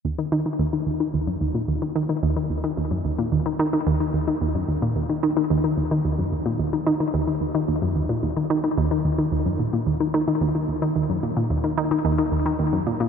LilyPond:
\new Staff \with { instrumentName = "Synth arpeggio sound" } { \clef bass \time 4/4 \key ees \minor \tempo 4 = 110 ees,16 ees16 ees16 ees16 ees,16 ees16 ees,16 ees16 ees,16 ges,16 ees,16 bes,16 ees,16 ees16 ees16 ees16 | ees,16 ees16 ees,16 ees16 ees,16 ges,16 ees,16 bes,16 ees,16 ees16 ees16 ees16 ees,16 ees16 ees,16 ees16 | ees,16 ges,16 ees,16 bes,16 ees,16 ees16 ees16 ees16 ees,16 ees16 ees,16 ees16 ees,16 ges,16 ees,16 bes,16 | ees,16 ees16 ees16 ees16 ees,16 ees16 ees,16 ees16 ees,16 ges,16 ees,16 bes,16 ees,16 ees16 ees16 ees16 |
ees,16 ees16 ees,16 ees16 ees,16 ges,16 bes,16 bes,16 ees,16 ees16 ees16 ees16 ees,16 ees16 ees,16 ees16 | ees,16 ges,16 bes,16 bes,16 ees,16 ees16 ees16 ees16 ees,16 ees16 ees,16 ees16 ees,16 ges,16 bes,16 bes,16 | }